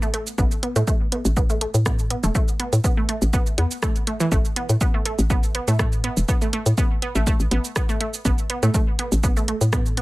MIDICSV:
0, 0, Header, 1, 4, 480
1, 0, Start_track
1, 0, Tempo, 491803
1, 374, Time_signature, 4, 2, 24, 8
1, 9779, End_track
2, 0, Start_track
2, 0, Title_t, "Synth pluck"
2, 0, Program_c, 0, 84
2, 21, Note_on_c, 0, 57, 80
2, 87, Note_off_c, 0, 57, 0
2, 134, Note_on_c, 0, 57, 80
2, 184, Note_off_c, 0, 57, 0
2, 374, Note_on_c, 0, 59, 87
2, 424, Note_off_c, 0, 59, 0
2, 614, Note_on_c, 0, 59, 77
2, 664, Note_off_c, 0, 59, 0
2, 742, Note_on_c, 0, 57, 82
2, 808, Note_off_c, 0, 57, 0
2, 854, Note_on_c, 0, 57, 86
2, 904, Note_off_c, 0, 57, 0
2, 1094, Note_on_c, 0, 59, 74
2, 1144, Note_off_c, 0, 59, 0
2, 1335, Note_on_c, 0, 59, 88
2, 1384, Note_off_c, 0, 59, 0
2, 1462, Note_on_c, 0, 57, 75
2, 1527, Note_off_c, 0, 57, 0
2, 1574, Note_on_c, 0, 57, 75
2, 1624, Note_off_c, 0, 57, 0
2, 1814, Note_on_c, 0, 59, 83
2, 1864, Note_off_c, 0, 59, 0
2, 2054, Note_on_c, 0, 59, 76
2, 2104, Note_off_c, 0, 59, 0
2, 2181, Note_on_c, 0, 57, 76
2, 2247, Note_off_c, 0, 57, 0
2, 2294, Note_on_c, 0, 57, 88
2, 2344, Note_off_c, 0, 57, 0
2, 2534, Note_on_c, 0, 59, 78
2, 2584, Note_off_c, 0, 59, 0
2, 2774, Note_on_c, 0, 59, 83
2, 2824, Note_off_c, 0, 59, 0
2, 2902, Note_on_c, 0, 57, 76
2, 2968, Note_off_c, 0, 57, 0
2, 3014, Note_on_c, 0, 57, 74
2, 3064, Note_off_c, 0, 57, 0
2, 3254, Note_on_c, 0, 59, 91
2, 3304, Note_off_c, 0, 59, 0
2, 3494, Note_on_c, 0, 59, 77
2, 3544, Note_off_c, 0, 59, 0
2, 3734, Note_on_c, 0, 57, 85
2, 3784, Note_off_c, 0, 57, 0
2, 3974, Note_on_c, 0, 57, 73
2, 4024, Note_off_c, 0, 57, 0
2, 4102, Note_on_c, 0, 52, 103
2, 4146, Note_off_c, 0, 52, 0
2, 4214, Note_on_c, 0, 57, 91
2, 4264, Note_off_c, 0, 57, 0
2, 4454, Note_on_c, 0, 59, 77
2, 4504, Note_off_c, 0, 59, 0
2, 4694, Note_on_c, 0, 59, 87
2, 4744, Note_off_c, 0, 59, 0
2, 4822, Note_on_c, 0, 57, 79
2, 4888, Note_off_c, 0, 57, 0
2, 4935, Note_on_c, 0, 57, 80
2, 4984, Note_off_c, 0, 57, 0
2, 5175, Note_on_c, 0, 59, 87
2, 5224, Note_off_c, 0, 59, 0
2, 5415, Note_on_c, 0, 59, 74
2, 5464, Note_off_c, 0, 59, 0
2, 5542, Note_on_c, 0, 57, 75
2, 5607, Note_off_c, 0, 57, 0
2, 5654, Note_on_c, 0, 57, 84
2, 5704, Note_off_c, 0, 57, 0
2, 5894, Note_on_c, 0, 59, 77
2, 5944, Note_off_c, 0, 59, 0
2, 6134, Note_on_c, 0, 59, 88
2, 6184, Note_off_c, 0, 59, 0
2, 6262, Note_on_c, 0, 57, 75
2, 6328, Note_off_c, 0, 57, 0
2, 6374, Note_on_c, 0, 57, 80
2, 6424, Note_off_c, 0, 57, 0
2, 6614, Note_on_c, 0, 59, 83
2, 6664, Note_off_c, 0, 59, 0
2, 6853, Note_on_c, 0, 59, 78
2, 6904, Note_off_c, 0, 59, 0
2, 6982, Note_on_c, 0, 57, 77
2, 7047, Note_off_c, 0, 57, 0
2, 7094, Note_on_c, 0, 57, 90
2, 7144, Note_off_c, 0, 57, 0
2, 7334, Note_on_c, 0, 59, 79
2, 7384, Note_off_c, 0, 59, 0
2, 7574, Note_on_c, 0, 59, 82
2, 7624, Note_off_c, 0, 59, 0
2, 7701, Note_on_c, 0, 57, 79
2, 7767, Note_off_c, 0, 57, 0
2, 7814, Note_on_c, 0, 57, 74
2, 7864, Note_off_c, 0, 57, 0
2, 8054, Note_on_c, 0, 59, 88
2, 8104, Note_off_c, 0, 59, 0
2, 8294, Note_on_c, 0, 59, 81
2, 8344, Note_off_c, 0, 59, 0
2, 8422, Note_on_c, 0, 57, 79
2, 8487, Note_off_c, 0, 57, 0
2, 8534, Note_on_c, 0, 57, 85
2, 8584, Note_off_c, 0, 57, 0
2, 8774, Note_on_c, 0, 59, 76
2, 8824, Note_off_c, 0, 59, 0
2, 9014, Note_on_c, 0, 59, 87
2, 9064, Note_off_c, 0, 59, 0
2, 9142, Note_on_c, 0, 57, 77
2, 9208, Note_off_c, 0, 57, 0
2, 9254, Note_on_c, 0, 57, 75
2, 9304, Note_off_c, 0, 57, 0
2, 9494, Note_on_c, 0, 59, 85
2, 9544, Note_off_c, 0, 59, 0
2, 9734, Note_on_c, 0, 59, 76
2, 9779, Note_off_c, 0, 59, 0
2, 9779, End_track
3, 0, Start_track
3, 0, Title_t, "FM bass"
3, 0, Program_c, 1, 39
3, 374, Note_on_c, 1, 33, 103
3, 454, Note_off_c, 1, 33, 0
3, 741, Note_on_c, 1, 45, 95
3, 812, Note_off_c, 1, 45, 0
3, 1221, Note_on_c, 1, 33, 111
3, 1625, Note_off_c, 1, 33, 0
3, 1701, Note_on_c, 1, 45, 97
3, 2105, Note_off_c, 1, 45, 0
3, 2182, Note_on_c, 1, 28, 101
3, 2252, Note_off_c, 1, 28, 0
3, 2661, Note_on_c, 1, 45, 100
3, 2732, Note_off_c, 1, 45, 0
3, 3141, Note_on_c, 1, 33, 107
3, 3286, Note_off_c, 1, 33, 0
3, 3493, Note_on_c, 1, 40, 100
3, 3574, Note_off_c, 1, 40, 0
3, 4214, Note_on_c, 1, 33, 101
3, 4294, Note_off_c, 1, 33, 0
3, 4582, Note_on_c, 1, 45, 93
3, 4652, Note_off_c, 1, 45, 0
3, 5062, Note_on_c, 1, 33, 111
3, 5465, Note_off_c, 1, 33, 0
3, 5542, Note_on_c, 1, 45, 97
3, 5945, Note_off_c, 1, 45, 0
3, 6022, Note_on_c, 1, 28, 101
3, 6092, Note_off_c, 1, 28, 0
3, 6502, Note_on_c, 1, 45, 96
3, 6572, Note_off_c, 1, 45, 0
3, 6982, Note_on_c, 1, 33, 105
3, 7126, Note_off_c, 1, 33, 0
3, 7221, Note_on_c, 1, 33, 88
3, 7292, Note_off_c, 1, 33, 0
3, 7334, Note_on_c, 1, 33, 105
3, 7414, Note_off_c, 1, 33, 0
3, 8054, Note_on_c, 1, 33, 102
3, 8134, Note_off_c, 1, 33, 0
3, 8421, Note_on_c, 1, 45, 99
3, 8491, Note_off_c, 1, 45, 0
3, 8901, Note_on_c, 1, 33, 107
3, 9305, Note_off_c, 1, 33, 0
3, 9381, Note_on_c, 1, 45, 96
3, 9779, Note_off_c, 1, 45, 0
3, 9779, End_track
4, 0, Start_track
4, 0, Title_t, "Drums"
4, 22, Note_on_c, 9, 69, 31
4, 120, Note_off_c, 9, 69, 0
4, 134, Note_on_c, 9, 42, 96
4, 231, Note_off_c, 9, 42, 0
4, 262, Note_on_c, 9, 69, 46
4, 359, Note_off_c, 9, 69, 0
4, 374, Note_on_c, 9, 36, 122
4, 374, Note_on_c, 9, 69, 53
4, 471, Note_off_c, 9, 36, 0
4, 471, Note_off_c, 9, 69, 0
4, 502, Note_on_c, 9, 69, 29
4, 599, Note_off_c, 9, 69, 0
4, 614, Note_on_c, 9, 42, 101
4, 711, Note_off_c, 9, 42, 0
4, 742, Note_on_c, 9, 42, 38
4, 742, Note_on_c, 9, 69, 41
4, 840, Note_off_c, 9, 42, 0
4, 840, Note_off_c, 9, 69, 0
4, 854, Note_on_c, 9, 36, 127
4, 854, Note_on_c, 9, 69, 51
4, 951, Note_off_c, 9, 36, 0
4, 952, Note_off_c, 9, 69, 0
4, 1094, Note_on_c, 9, 42, 98
4, 1192, Note_off_c, 9, 42, 0
4, 1222, Note_on_c, 9, 69, 43
4, 1319, Note_off_c, 9, 69, 0
4, 1334, Note_on_c, 9, 36, 120
4, 1334, Note_on_c, 9, 69, 52
4, 1431, Note_off_c, 9, 69, 0
4, 1432, Note_off_c, 9, 36, 0
4, 1462, Note_on_c, 9, 69, 29
4, 1559, Note_off_c, 9, 69, 0
4, 1574, Note_on_c, 9, 42, 99
4, 1671, Note_off_c, 9, 42, 0
4, 1702, Note_on_c, 9, 69, 41
4, 1800, Note_off_c, 9, 69, 0
4, 1814, Note_on_c, 9, 36, 127
4, 1814, Note_on_c, 9, 37, 107
4, 1814, Note_on_c, 9, 69, 53
4, 1911, Note_off_c, 9, 36, 0
4, 1912, Note_off_c, 9, 37, 0
4, 1912, Note_off_c, 9, 69, 0
4, 1942, Note_on_c, 9, 69, 29
4, 2039, Note_off_c, 9, 69, 0
4, 2054, Note_on_c, 9, 42, 102
4, 2151, Note_off_c, 9, 42, 0
4, 2181, Note_on_c, 9, 69, 42
4, 2279, Note_off_c, 9, 69, 0
4, 2294, Note_on_c, 9, 36, 124
4, 2294, Note_on_c, 9, 69, 50
4, 2391, Note_off_c, 9, 36, 0
4, 2392, Note_off_c, 9, 69, 0
4, 2422, Note_on_c, 9, 69, 27
4, 2520, Note_off_c, 9, 69, 0
4, 2534, Note_on_c, 9, 42, 102
4, 2631, Note_off_c, 9, 42, 0
4, 2662, Note_on_c, 9, 42, 39
4, 2662, Note_on_c, 9, 69, 41
4, 2760, Note_off_c, 9, 42, 0
4, 2760, Note_off_c, 9, 69, 0
4, 2774, Note_on_c, 9, 36, 117
4, 2774, Note_on_c, 9, 69, 52
4, 2871, Note_off_c, 9, 36, 0
4, 2871, Note_off_c, 9, 69, 0
4, 3014, Note_on_c, 9, 42, 103
4, 3111, Note_off_c, 9, 42, 0
4, 3142, Note_on_c, 9, 69, 40
4, 3239, Note_off_c, 9, 69, 0
4, 3253, Note_on_c, 9, 69, 50
4, 3254, Note_on_c, 9, 36, 118
4, 3351, Note_off_c, 9, 36, 0
4, 3351, Note_off_c, 9, 69, 0
4, 3382, Note_on_c, 9, 69, 27
4, 3479, Note_off_c, 9, 69, 0
4, 3494, Note_on_c, 9, 42, 98
4, 3591, Note_off_c, 9, 42, 0
4, 3622, Note_on_c, 9, 69, 42
4, 3720, Note_off_c, 9, 69, 0
4, 3734, Note_on_c, 9, 36, 127
4, 3734, Note_on_c, 9, 37, 108
4, 3734, Note_on_c, 9, 69, 54
4, 3831, Note_off_c, 9, 36, 0
4, 3832, Note_off_c, 9, 37, 0
4, 3832, Note_off_c, 9, 69, 0
4, 3862, Note_on_c, 9, 42, 40
4, 3862, Note_on_c, 9, 69, 29
4, 3960, Note_off_c, 9, 42, 0
4, 3960, Note_off_c, 9, 69, 0
4, 3974, Note_on_c, 9, 42, 101
4, 4071, Note_off_c, 9, 42, 0
4, 4102, Note_on_c, 9, 69, 41
4, 4199, Note_off_c, 9, 69, 0
4, 4214, Note_on_c, 9, 36, 118
4, 4214, Note_on_c, 9, 69, 50
4, 4311, Note_off_c, 9, 36, 0
4, 4312, Note_off_c, 9, 69, 0
4, 4342, Note_on_c, 9, 69, 30
4, 4439, Note_off_c, 9, 69, 0
4, 4454, Note_on_c, 9, 42, 100
4, 4551, Note_off_c, 9, 42, 0
4, 4581, Note_on_c, 9, 42, 38
4, 4581, Note_on_c, 9, 69, 39
4, 4679, Note_off_c, 9, 42, 0
4, 4679, Note_off_c, 9, 69, 0
4, 4693, Note_on_c, 9, 69, 51
4, 4694, Note_on_c, 9, 36, 119
4, 4791, Note_off_c, 9, 36, 0
4, 4791, Note_off_c, 9, 69, 0
4, 4934, Note_on_c, 9, 42, 101
4, 5031, Note_off_c, 9, 42, 0
4, 5062, Note_on_c, 9, 69, 42
4, 5159, Note_off_c, 9, 69, 0
4, 5174, Note_on_c, 9, 36, 112
4, 5174, Note_on_c, 9, 69, 50
4, 5271, Note_off_c, 9, 36, 0
4, 5271, Note_off_c, 9, 69, 0
4, 5302, Note_on_c, 9, 69, 28
4, 5399, Note_off_c, 9, 69, 0
4, 5414, Note_on_c, 9, 42, 98
4, 5511, Note_off_c, 9, 42, 0
4, 5542, Note_on_c, 9, 69, 42
4, 5640, Note_off_c, 9, 69, 0
4, 5654, Note_on_c, 9, 36, 115
4, 5654, Note_on_c, 9, 37, 106
4, 5654, Note_on_c, 9, 69, 52
4, 5751, Note_off_c, 9, 36, 0
4, 5752, Note_off_c, 9, 37, 0
4, 5752, Note_off_c, 9, 69, 0
4, 5782, Note_on_c, 9, 69, 30
4, 5880, Note_off_c, 9, 69, 0
4, 5894, Note_on_c, 9, 42, 94
4, 5991, Note_off_c, 9, 42, 0
4, 6021, Note_on_c, 9, 69, 44
4, 6119, Note_off_c, 9, 69, 0
4, 6134, Note_on_c, 9, 36, 115
4, 6134, Note_on_c, 9, 69, 51
4, 6231, Note_off_c, 9, 36, 0
4, 6231, Note_off_c, 9, 69, 0
4, 6262, Note_on_c, 9, 69, 31
4, 6360, Note_off_c, 9, 69, 0
4, 6374, Note_on_c, 9, 42, 97
4, 6471, Note_off_c, 9, 42, 0
4, 6502, Note_on_c, 9, 42, 37
4, 6502, Note_on_c, 9, 69, 42
4, 6600, Note_off_c, 9, 42, 0
4, 6600, Note_off_c, 9, 69, 0
4, 6614, Note_on_c, 9, 36, 117
4, 6614, Note_on_c, 9, 69, 51
4, 6711, Note_off_c, 9, 36, 0
4, 6712, Note_off_c, 9, 69, 0
4, 6854, Note_on_c, 9, 42, 90
4, 6952, Note_off_c, 9, 42, 0
4, 6982, Note_on_c, 9, 69, 44
4, 7079, Note_off_c, 9, 69, 0
4, 7094, Note_on_c, 9, 36, 114
4, 7094, Note_on_c, 9, 69, 52
4, 7191, Note_off_c, 9, 36, 0
4, 7191, Note_off_c, 9, 69, 0
4, 7221, Note_on_c, 9, 69, 29
4, 7319, Note_off_c, 9, 69, 0
4, 7333, Note_on_c, 9, 42, 90
4, 7431, Note_off_c, 9, 42, 0
4, 7462, Note_on_c, 9, 69, 42
4, 7559, Note_off_c, 9, 69, 0
4, 7573, Note_on_c, 9, 37, 103
4, 7573, Note_on_c, 9, 69, 54
4, 7574, Note_on_c, 9, 36, 113
4, 7671, Note_off_c, 9, 36, 0
4, 7671, Note_off_c, 9, 37, 0
4, 7671, Note_off_c, 9, 69, 0
4, 7701, Note_on_c, 9, 69, 31
4, 7799, Note_off_c, 9, 69, 0
4, 7813, Note_on_c, 9, 42, 92
4, 7911, Note_off_c, 9, 42, 0
4, 7941, Note_on_c, 9, 69, 43
4, 8039, Note_off_c, 9, 69, 0
4, 8054, Note_on_c, 9, 36, 106
4, 8054, Note_on_c, 9, 69, 54
4, 8151, Note_off_c, 9, 36, 0
4, 8151, Note_off_c, 9, 69, 0
4, 8181, Note_on_c, 9, 69, 31
4, 8279, Note_off_c, 9, 69, 0
4, 8293, Note_on_c, 9, 42, 95
4, 8390, Note_off_c, 9, 42, 0
4, 8421, Note_on_c, 9, 42, 36
4, 8421, Note_on_c, 9, 69, 44
4, 8518, Note_off_c, 9, 42, 0
4, 8518, Note_off_c, 9, 69, 0
4, 8533, Note_on_c, 9, 36, 110
4, 8533, Note_on_c, 9, 69, 54
4, 8631, Note_off_c, 9, 36, 0
4, 8631, Note_off_c, 9, 69, 0
4, 8773, Note_on_c, 9, 42, 96
4, 8871, Note_off_c, 9, 42, 0
4, 8901, Note_on_c, 9, 69, 45
4, 8999, Note_off_c, 9, 69, 0
4, 9013, Note_on_c, 9, 36, 111
4, 9013, Note_on_c, 9, 69, 56
4, 9111, Note_off_c, 9, 36, 0
4, 9111, Note_off_c, 9, 69, 0
4, 9141, Note_on_c, 9, 69, 30
4, 9239, Note_off_c, 9, 69, 0
4, 9253, Note_on_c, 9, 42, 92
4, 9351, Note_off_c, 9, 42, 0
4, 9382, Note_on_c, 9, 69, 46
4, 9480, Note_off_c, 9, 69, 0
4, 9494, Note_on_c, 9, 36, 118
4, 9494, Note_on_c, 9, 37, 105
4, 9494, Note_on_c, 9, 69, 55
4, 9591, Note_off_c, 9, 36, 0
4, 9592, Note_off_c, 9, 37, 0
4, 9592, Note_off_c, 9, 69, 0
4, 9622, Note_on_c, 9, 69, 32
4, 9719, Note_off_c, 9, 69, 0
4, 9734, Note_on_c, 9, 42, 91
4, 9779, Note_off_c, 9, 42, 0
4, 9779, End_track
0, 0, End_of_file